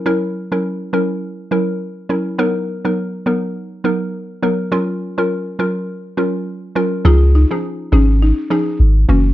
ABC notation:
X:1
M:4/4
L:1/16
Q:"Swing 16ths" 1/4=103
K:F#
V:1 name="Marimba"
z16 | z16 | z16 | E2 D4 C2 D2 D4 C2 |]
V:2 name="Synth pluck"
[F,C=EA]3 [F,CEA] z2 [F,CEA] z3 [F,CEA] z3 [F,CEA] z | [F,B,DA]3 [F,B,DA] z2 [F,B,DA] z3 [F,B,DA] z3 [F,B,DA] z | [F,CEA]3 [F,CEA] z2 [F,CEA] z3 [F,CEA] z3 [F,CEA] z | [E,CDG]3 [E,CDG] z2 [E,CDG] z3 [E,CDG] z3 [=E,A,CF] z |]
V:3 name="Sub bass" clef=bass
z16 | z16 | z16 | C,,3 z3 G,,,3 z3 G,,,2 F,,,2 |]